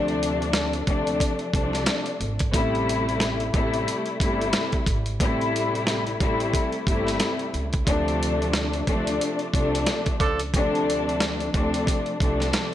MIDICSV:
0, 0, Header, 1, 5, 480
1, 0, Start_track
1, 0, Key_signature, -1, "minor"
1, 0, Tempo, 666667
1, 1827, Time_signature, 4, 2, 24, 8
1, 9175, End_track
2, 0, Start_track
2, 0, Title_t, "Horn section"
2, 0, Program_c, 0, 61
2, 7338, Note_on_c, 0, 53, 97
2, 7338, Note_on_c, 0, 62, 89
2, 7339, Note_on_c, 0, 69, 109
2, 7494, Note_off_c, 0, 53, 0
2, 7494, Note_off_c, 0, 62, 0
2, 7494, Note_off_c, 0, 69, 0
2, 9175, End_track
3, 0, Start_track
3, 0, Title_t, "String section"
3, 0, Program_c, 1, 48
3, 0, Note_on_c, 1, 48, 112
3, 0, Note_on_c, 1, 53, 103
3, 0, Note_on_c, 1, 57, 98
3, 0, Note_on_c, 1, 62, 125
3, 580, Note_off_c, 1, 48, 0
3, 582, Note_off_c, 1, 53, 0
3, 584, Note_off_c, 1, 57, 0
3, 587, Note_off_c, 1, 62, 0
3, 617, Note_on_c, 1, 48, 97
3, 621, Note_on_c, 1, 53, 89
3, 626, Note_on_c, 1, 57, 89
3, 630, Note_on_c, 1, 62, 110
3, 1071, Note_off_c, 1, 48, 0
3, 1073, Note_off_c, 1, 53, 0
3, 1075, Note_off_c, 1, 57, 0
3, 1077, Note_off_c, 1, 62, 0
3, 1101, Note_on_c, 1, 48, 93
3, 1105, Note_on_c, 1, 53, 95
3, 1109, Note_on_c, 1, 57, 88
3, 1113, Note_on_c, 1, 62, 107
3, 1669, Note_off_c, 1, 48, 0
3, 1671, Note_off_c, 1, 53, 0
3, 1673, Note_off_c, 1, 57, 0
3, 1675, Note_off_c, 1, 62, 0
3, 1812, Note_on_c, 1, 48, 109
3, 1816, Note_on_c, 1, 55, 96
3, 1821, Note_on_c, 1, 57, 97
3, 1826, Note_on_c, 1, 64, 122
3, 2493, Note_off_c, 1, 48, 0
3, 2495, Note_off_c, 1, 55, 0
3, 2497, Note_off_c, 1, 57, 0
3, 2499, Note_off_c, 1, 64, 0
3, 2542, Note_on_c, 1, 48, 97
3, 2546, Note_on_c, 1, 55, 89
3, 2551, Note_on_c, 1, 57, 95
3, 2555, Note_on_c, 1, 64, 109
3, 2993, Note_off_c, 1, 48, 0
3, 2995, Note_off_c, 1, 55, 0
3, 2997, Note_off_c, 1, 57, 0
3, 2999, Note_off_c, 1, 64, 0
3, 3024, Note_on_c, 1, 48, 108
3, 3028, Note_on_c, 1, 55, 92
3, 3033, Note_on_c, 1, 57, 93
3, 3037, Note_on_c, 1, 64, 105
3, 3591, Note_off_c, 1, 48, 0
3, 3593, Note_off_c, 1, 55, 0
3, 3595, Note_off_c, 1, 57, 0
3, 3597, Note_off_c, 1, 64, 0
3, 3741, Note_on_c, 1, 48, 101
3, 3745, Note_on_c, 1, 55, 96
3, 3749, Note_on_c, 1, 57, 92
3, 3754, Note_on_c, 1, 64, 118
3, 4417, Note_off_c, 1, 48, 0
3, 4419, Note_off_c, 1, 55, 0
3, 4421, Note_off_c, 1, 57, 0
3, 4424, Note_off_c, 1, 64, 0
3, 4461, Note_on_c, 1, 48, 106
3, 4465, Note_on_c, 1, 55, 88
3, 4470, Note_on_c, 1, 57, 88
3, 4474, Note_on_c, 1, 64, 112
3, 4912, Note_off_c, 1, 48, 0
3, 4915, Note_off_c, 1, 55, 0
3, 4917, Note_off_c, 1, 57, 0
3, 4919, Note_off_c, 1, 64, 0
3, 4940, Note_on_c, 1, 48, 105
3, 4944, Note_on_c, 1, 55, 88
3, 4949, Note_on_c, 1, 57, 102
3, 4953, Note_on_c, 1, 64, 106
3, 5509, Note_off_c, 1, 48, 0
3, 5511, Note_off_c, 1, 55, 0
3, 5513, Note_off_c, 1, 57, 0
3, 5515, Note_off_c, 1, 64, 0
3, 5651, Note_on_c, 1, 48, 112
3, 5655, Note_on_c, 1, 53, 97
3, 5659, Note_on_c, 1, 57, 98
3, 5664, Note_on_c, 1, 62, 117
3, 6332, Note_off_c, 1, 48, 0
3, 6334, Note_off_c, 1, 53, 0
3, 6336, Note_off_c, 1, 57, 0
3, 6338, Note_off_c, 1, 62, 0
3, 6379, Note_on_c, 1, 48, 88
3, 6383, Note_on_c, 1, 53, 95
3, 6387, Note_on_c, 1, 57, 100
3, 6392, Note_on_c, 1, 62, 109
3, 6831, Note_off_c, 1, 48, 0
3, 6834, Note_off_c, 1, 53, 0
3, 6835, Note_off_c, 1, 57, 0
3, 6838, Note_off_c, 1, 62, 0
3, 6849, Note_on_c, 1, 48, 97
3, 6853, Note_on_c, 1, 53, 92
3, 6857, Note_on_c, 1, 57, 99
3, 6862, Note_on_c, 1, 62, 113
3, 7423, Note_off_c, 1, 48, 0
3, 7425, Note_off_c, 1, 53, 0
3, 7427, Note_off_c, 1, 57, 0
3, 7430, Note_off_c, 1, 62, 0
3, 7589, Note_on_c, 1, 48, 110
3, 7593, Note_on_c, 1, 53, 99
3, 7597, Note_on_c, 1, 57, 100
3, 7601, Note_on_c, 1, 62, 127
3, 8261, Note_off_c, 1, 48, 0
3, 8263, Note_off_c, 1, 53, 0
3, 8265, Note_off_c, 1, 57, 0
3, 8267, Note_off_c, 1, 62, 0
3, 8299, Note_on_c, 1, 48, 99
3, 8303, Note_on_c, 1, 53, 91
3, 8307, Note_on_c, 1, 57, 89
3, 8311, Note_on_c, 1, 62, 109
3, 8751, Note_off_c, 1, 48, 0
3, 8753, Note_off_c, 1, 53, 0
3, 8756, Note_off_c, 1, 57, 0
3, 8758, Note_off_c, 1, 62, 0
3, 8782, Note_on_c, 1, 48, 95
3, 8787, Note_on_c, 1, 53, 96
3, 8791, Note_on_c, 1, 57, 91
3, 8796, Note_on_c, 1, 62, 105
3, 9175, Note_off_c, 1, 48, 0
3, 9175, Note_off_c, 1, 53, 0
3, 9175, Note_off_c, 1, 57, 0
3, 9175, Note_off_c, 1, 62, 0
3, 9175, End_track
4, 0, Start_track
4, 0, Title_t, "Upright bass"
4, 0, Program_c, 2, 32
4, 0, Note_on_c, 2, 38, 115
4, 597, Note_off_c, 2, 38, 0
4, 629, Note_on_c, 2, 38, 96
4, 840, Note_off_c, 2, 38, 0
4, 1106, Note_on_c, 2, 36, 99
4, 1318, Note_off_c, 2, 36, 0
4, 1587, Note_on_c, 2, 32, 95
4, 1799, Note_off_c, 2, 32, 0
4, 1826, Note_on_c, 2, 33, 108
4, 2518, Note_off_c, 2, 33, 0
4, 2549, Note_on_c, 2, 33, 103
4, 2760, Note_off_c, 2, 33, 0
4, 3026, Note_on_c, 2, 31, 90
4, 3238, Note_off_c, 2, 31, 0
4, 3503, Note_on_c, 2, 32, 96
4, 3717, Note_off_c, 2, 32, 0
4, 3745, Note_on_c, 2, 33, 109
4, 4437, Note_off_c, 2, 33, 0
4, 4468, Note_on_c, 2, 33, 97
4, 4680, Note_off_c, 2, 33, 0
4, 4945, Note_on_c, 2, 31, 94
4, 5158, Note_off_c, 2, 31, 0
4, 5426, Note_on_c, 2, 37, 83
4, 5638, Note_off_c, 2, 37, 0
4, 5666, Note_on_c, 2, 38, 114
4, 6357, Note_off_c, 2, 38, 0
4, 6389, Note_on_c, 2, 38, 95
4, 6600, Note_off_c, 2, 38, 0
4, 6866, Note_on_c, 2, 36, 94
4, 7079, Note_off_c, 2, 36, 0
4, 7345, Note_on_c, 2, 37, 91
4, 7558, Note_off_c, 2, 37, 0
4, 7587, Note_on_c, 2, 38, 109
4, 8278, Note_off_c, 2, 38, 0
4, 8310, Note_on_c, 2, 38, 97
4, 8521, Note_off_c, 2, 38, 0
4, 8787, Note_on_c, 2, 36, 97
4, 8999, Note_off_c, 2, 36, 0
4, 9175, End_track
5, 0, Start_track
5, 0, Title_t, "Drums"
5, 60, Note_on_c, 9, 42, 38
5, 132, Note_off_c, 9, 42, 0
5, 164, Note_on_c, 9, 42, 87
5, 236, Note_off_c, 9, 42, 0
5, 302, Note_on_c, 9, 42, 54
5, 374, Note_off_c, 9, 42, 0
5, 384, Note_on_c, 9, 38, 111
5, 394, Note_on_c, 9, 42, 87
5, 456, Note_off_c, 9, 38, 0
5, 466, Note_off_c, 9, 42, 0
5, 528, Note_on_c, 9, 42, 38
5, 600, Note_off_c, 9, 42, 0
5, 627, Note_on_c, 9, 42, 69
5, 628, Note_on_c, 9, 36, 95
5, 699, Note_off_c, 9, 42, 0
5, 700, Note_off_c, 9, 36, 0
5, 771, Note_on_c, 9, 42, 61
5, 843, Note_off_c, 9, 42, 0
5, 866, Note_on_c, 9, 36, 97
5, 872, Note_on_c, 9, 42, 96
5, 938, Note_off_c, 9, 36, 0
5, 944, Note_off_c, 9, 42, 0
5, 1001, Note_on_c, 9, 42, 36
5, 1073, Note_off_c, 9, 42, 0
5, 1105, Note_on_c, 9, 36, 100
5, 1114, Note_on_c, 9, 42, 74
5, 1177, Note_off_c, 9, 36, 0
5, 1186, Note_off_c, 9, 42, 0
5, 1248, Note_on_c, 9, 38, 36
5, 1259, Note_on_c, 9, 42, 61
5, 1320, Note_off_c, 9, 38, 0
5, 1331, Note_off_c, 9, 42, 0
5, 1341, Note_on_c, 9, 42, 98
5, 1343, Note_on_c, 9, 38, 114
5, 1413, Note_off_c, 9, 42, 0
5, 1415, Note_off_c, 9, 38, 0
5, 1482, Note_on_c, 9, 42, 39
5, 1554, Note_off_c, 9, 42, 0
5, 1589, Note_on_c, 9, 42, 68
5, 1661, Note_off_c, 9, 42, 0
5, 1724, Note_on_c, 9, 42, 61
5, 1731, Note_on_c, 9, 36, 101
5, 1796, Note_off_c, 9, 42, 0
5, 1803, Note_off_c, 9, 36, 0
5, 1826, Note_on_c, 9, 36, 119
5, 1829, Note_on_c, 9, 42, 102
5, 1898, Note_off_c, 9, 36, 0
5, 1901, Note_off_c, 9, 42, 0
5, 1979, Note_on_c, 9, 42, 38
5, 2051, Note_off_c, 9, 42, 0
5, 2084, Note_on_c, 9, 42, 88
5, 2156, Note_off_c, 9, 42, 0
5, 2223, Note_on_c, 9, 42, 57
5, 2295, Note_off_c, 9, 42, 0
5, 2305, Note_on_c, 9, 38, 113
5, 2315, Note_on_c, 9, 42, 88
5, 2377, Note_off_c, 9, 38, 0
5, 2387, Note_off_c, 9, 42, 0
5, 2449, Note_on_c, 9, 42, 37
5, 2521, Note_off_c, 9, 42, 0
5, 2547, Note_on_c, 9, 42, 66
5, 2548, Note_on_c, 9, 36, 97
5, 2619, Note_off_c, 9, 42, 0
5, 2620, Note_off_c, 9, 36, 0
5, 2690, Note_on_c, 9, 42, 62
5, 2762, Note_off_c, 9, 42, 0
5, 2793, Note_on_c, 9, 42, 97
5, 2865, Note_off_c, 9, 42, 0
5, 2921, Note_on_c, 9, 42, 38
5, 2993, Note_off_c, 9, 42, 0
5, 3025, Note_on_c, 9, 36, 100
5, 3034, Note_on_c, 9, 42, 72
5, 3097, Note_off_c, 9, 36, 0
5, 3106, Note_off_c, 9, 42, 0
5, 3179, Note_on_c, 9, 42, 61
5, 3251, Note_off_c, 9, 42, 0
5, 3261, Note_on_c, 9, 42, 100
5, 3263, Note_on_c, 9, 38, 116
5, 3333, Note_off_c, 9, 42, 0
5, 3335, Note_off_c, 9, 38, 0
5, 3401, Note_on_c, 9, 42, 37
5, 3405, Note_on_c, 9, 36, 88
5, 3473, Note_off_c, 9, 42, 0
5, 3477, Note_off_c, 9, 36, 0
5, 3503, Note_on_c, 9, 36, 99
5, 3508, Note_on_c, 9, 42, 66
5, 3575, Note_off_c, 9, 36, 0
5, 3580, Note_off_c, 9, 42, 0
5, 3642, Note_on_c, 9, 42, 59
5, 3714, Note_off_c, 9, 42, 0
5, 3745, Note_on_c, 9, 36, 116
5, 3748, Note_on_c, 9, 42, 99
5, 3817, Note_off_c, 9, 36, 0
5, 3820, Note_off_c, 9, 42, 0
5, 3898, Note_on_c, 9, 42, 39
5, 3970, Note_off_c, 9, 42, 0
5, 4002, Note_on_c, 9, 42, 87
5, 4074, Note_off_c, 9, 42, 0
5, 4142, Note_on_c, 9, 42, 58
5, 4214, Note_off_c, 9, 42, 0
5, 4225, Note_on_c, 9, 38, 117
5, 4235, Note_on_c, 9, 42, 84
5, 4297, Note_off_c, 9, 38, 0
5, 4307, Note_off_c, 9, 42, 0
5, 4368, Note_on_c, 9, 42, 36
5, 4440, Note_off_c, 9, 42, 0
5, 4467, Note_on_c, 9, 36, 90
5, 4467, Note_on_c, 9, 42, 64
5, 4539, Note_off_c, 9, 36, 0
5, 4539, Note_off_c, 9, 42, 0
5, 4610, Note_on_c, 9, 42, 61
5, 4682, Note_off_c, 9, 42, 0
5, 4706, Note_on_c, 9, 36, 99
5, 4713, Note_on_c, 9, 42, 96
5, 4778, Note_off_c, 9, 36, 0
5, 4785, Note_off_c, 9, 42, 0
5, 4842, Note_on_c, 9, 42, 35
5, 4914, Note_off_c, 9, 42, 0
5, 4945, Note_on_c, 9, 36, 101
5, 4954, Note_on_c, 9, 42, 72
5, 5017, Note_off_c, 9, 36, 0
5, 5026, Note_off_c, 9, 42, 0
5, 5089, Note_on_c, 9, 38, 38
5, 5100, Note_on_c, 9, 42, 63
5, 5161, Note_off_c, 9, 38, 0
5, 5172, Note_off_c, 9, 42, 0
5, 5181, Note_on_c, 9, 42, 96
5, 5184, Note_on_c, 9, 38, 119
5, 5253, Note_off_c, 9, 42, 0
5, 5256, Note_off_c, 9, 38, 0
5, 5323, Note_on_c, 9, 42, 37
5, 5395, Note_off_c, 9, 42, 0
5, 5429, Note_on_c, 9, 42, 67
5, 5501, Note_off_c, 9, 42, 0
5, 5563, Note_on_c, 9, 42, 58
5, 5570, Note_on_c, 9, 36, 104
5, 5635, Note_off_c, 9, 42, 0
5, 5642, Note_off_c, 9, 36, 0
5, 5665, Note_on_c, 9, 36, 117
5, 5669, Note_on_c, 9, 42, 100
5, 5737, Note_off_c, 9, 36, 0
5, 5741, Note_off_c, 9, 42, 0
5, 5818, Note_on_c, 9, 42, 38
5, 5890, Note_off_c, 9, 42, 0
5, 5923, Note_on_c, 9, 42, 89
5, 5995, Note_off_c, 9, 42, 0
5, 6062, Note_on_c, 9, 42, 57
5, 6134, Note_off_c, 9, 42, 0
5, 6145, Note_on_c, 9, 38, 111
5, 6155, Note_on_c, 9, 42, 86
5, 6217, Note_off_c, 9, 38, 0
5, 6227, Note_off_c, 9, 42, 0
5, 6289, Note_on_c, 9, 42, 37
5, 6361, Note_off_c, 9, 42, 0
5, 6389, Note_on_c, 9, 36, 93
5, 6389, Note_on_c, 9, 42, 66
5, 6461, Note_off_c, 9, 36, 0
5, 6461, Note_off_c, 9, 42, 0
5, 6532, Note_on_c, 9, 42, 62
5, 6604, Note_off_c, 9, 42, 0
5, 6634, Note_on_c, 9, 42, 94
5, 6706, Note_off_c, 9, 42, 0
5, 6761, Note_on_c, 9, 42, 36
5, 6833, Note_off_c, 9, 42, 0
5, 6866, Note_on_c, 9, 36, 98
5, 6874, Note_on_c, 9, 42, 75
5, 6938, Note_off_c, 9, 36, 0
5, 6946, Note_off_c, 9, 42, 0
5, 7020, Note_on_c, 9, 42, 61
5, 7092, Note_off_c, 9, 42, 0
5, 7103, Note_on_c, 9, 42, 98
5, 7105, Note_on_c, 9, 38, 119
5, 7175, Note_off_c, 9, 42, 0
5, 7177, Note_off_c, 9, 38, 0
5, 7243, Note_on_c, 9, 42, 37
5, 7246, Note_on_c, 9, 36, 90
5, 7315, Note_off_c, 9, 42, 0
5, 7318, Note_off_c, 9, 36, 0
5, 7344, Note_on_c, 9, 36, 102
5, 7349, Note_on_c, 9, 42, 65
5, 7416, Note_off_c, 9, 36, 0
5, 7421, Note_off_c, 9, 42, 0
5, 7484, Note_on_c, 9, 42, 58
5, 7556, Note_off_c, 9, 42, 0
5, 7587, Note_on_c, 9, 36, 122
5, 7591, Note_on_c, 9, 42, 100
5, 7659, Note_off_c, 9, 36, 0
5, 7663, Note_off_c, 9, 42, 0
5, 7741, Note_on_c, 9, 42, 38
5, 7813, Note_off_c, 9, 42, 0
5, 7846, Note_on_c, 9, 42, 85
5, 7918, Note_off_c, 9, 42, 0
5, 7985, Note_on_c, 9, 42, 57
5, 8057, Note_off_c, 9, 42, 0
5, 8067, Note_on_c, 9, 38, 112
5, 8077, Note_on_c, 9, 42, 89
5, 8139, Note_off_c, 9, 38, 0
5, 8149, Note_off_c, 9, 42, 0
5, 8211, Note_on_c, 9, 42, 36
5, 8283, Note_off_c, 9, 42, 0
5, 8310, Note_on_c, 9, 36, 94
5, 8310, Note_on_c, 9, 42, 68
5, 8382, Note_off_c, 9, 36, 0
5, 8382, Note_off_c, 9, 42, 0
5, 8453, Note_on_c, 9, 42, 61
5, 8525, Note_off_c, 9, 42, 0
5, 8548, Note_on_c, 9, 36, 100
5, 8555, Note_on_c, 9, 42, 92
5, 8620, Note_off_c, 9, 36, 0
5, 8627, Note_off_c, 9, 42, 0
5, 8683, Note_on_c, 9, 42, 36
5, 8755, Note_off_c, 9, 42, 0
5, 8787, Note_on_c, 9, 36, 100
5, 8796, Note_on_c, 9, 42, 75
5, 8859, Note_off_c, 9, 36, 0
5, 8868, Note_off_c, 9, 42, 0
5, 8930, Note_on_c, 9, 38, 37
5, 8941, Note_on_c, 9, 42, 62
5, 9002, Note_off_c, 9, 38, 0
5, 9013, Note_off_c, 9, 42, 0
5, 9024, Note_on_c, 9, 42, 97
5, 9026, Note_on_c, 9, 38, 119
5, 9096, Note_off_c, 9, 42, 0
5, 9098, Note_off_c, 9, 38, 0
5, 9175, End_track
0, 0, End_of_file